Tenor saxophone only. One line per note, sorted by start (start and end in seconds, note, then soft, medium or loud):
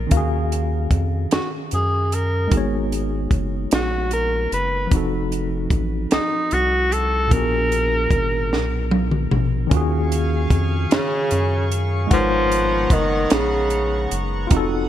1.33 1.49 F#4 medium
1.74 2.16 G#4 medium
2.14 2.53 A#4 medium
3.74 4.10 F#4 medium
4.13 4.50 A#4 medium
4.53 4.90 B4 medium
6.13 6.55 D#4 medium
6.54 6.94 F#4 medium
6.93 7.34 A4 medium
7.32 8.92 A#4 loud
10.92 11.68 C#3 loud
12.13 12.94 F3 loud
12.92 13.33 D#3 loud
13.32 14.22 C#3 medium